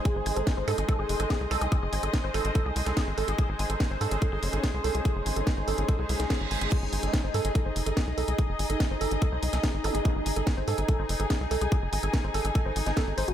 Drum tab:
CC |----------------|----------------|----------------|----------------|
HH |x-oxx-oxx-oxx-ox|x-oxx-oxx-oxx-ox|x-oxx-oxx-oxx-ox|x-oxx-oxx-oxx-ox|
SD |----o-------o---|----o------oo---|----o-------o---|----o------oo---|
BD |o---o---o---o---|o---o---o---o---|o---o---o---o---|o---o---o---o---|

CC |x---------------|----------------|----------------|----------------|
HH |x-oxx-oxx-oxx-ox|x-oxx-oxx-oxx-ox|x-oxx-oxx-oxx-ox|x-oxx-oxx-oxx-ox|
SD |----o-------o---|----o------oo---|----o-------o---|----o------oo---|
BD |o---o---o---o---|o---o---o---o---|o---o---o---o---|o---o---o---o---|